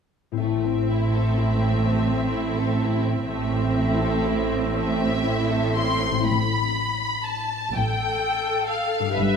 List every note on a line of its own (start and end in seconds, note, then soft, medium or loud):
0.32 4.22 A2 soft
0.32 4.22 C4 soft
0.32 4.23 E4 soft
0.37 3.26 A1 soft
0.37 3.26 A2 soft
0.37 0.63 A3 soft
0.37 3.26 C4 soft
0.37 4.27 E5 soft
0.37 3.25 E5 soft
0.65 0.90 C4 soft
0.90 1.15 E4 soft
1.15 1.39 A4 soft
1.38 1.63 E4 soft
1.62 1.87 C4 soft
1.86 2.11 A3 soft
2.08 2.34 C4 soft
2.33 2.58 E4 soft
2.58 2.82 A4 soft
2.83 3.07 E4 soft
3.07 3.30 C4 soft
3.29 6.05 A1 soft
3.29 6.04 A2 soft
3.29 3.52 A3 soft
3.29 6.05 C4 soft
3.29 4.72 E5 soft
3.54 3.78 C4 soft
3.80 4.03 E4 soft
4.01 4.26 A4 soft
4.26 4.51 E4 soft
4.50 4.75 C4 soft
4.75 5.00 A3 soft
4.75 5.74 E5 medium
4.75 5.74 E5 soft
4.99 5.25 C4 soft
5.25 5.51 E4 soft
5.50 5.77 A4 soft
5.75 6.03 E4 soft
5.75 6.28 C6 soft
5.75 6.29 C6 medium
6.03 6.28 C4 soft
6.11 9.12 A2 soft
6.16 9.15 C4 soft
6.16 9.17 E4 soft
6.25 7.56 A1 soft
6.25 7.56 A2 soft
6.25 9.19 E5 soft
6.25 7.24 B5 soft
6.29 7.24 B5 medium
7.25 7.74 A5 soft
7.25 7.75 A5 soft
7.73 8.99 A1 soft
7.73 8.98 A2 soft
7.73 9.13 A4 soft
7.73 8.69 G5 soft
7.73 8.70 G5 medium
8.68 9.16 F5 soft
9.00 9.37 G2 soft
9.04 9.37 D4 soft
9.09 9.37 G4 soft
9.13 9.37 G2 soft
9.13 9.37 B4 soft
9.13 9.37 E5 soft
9.13 9.37 E5 medium
9.18 9.37 G1 soft
9.18 9.37 B4 soft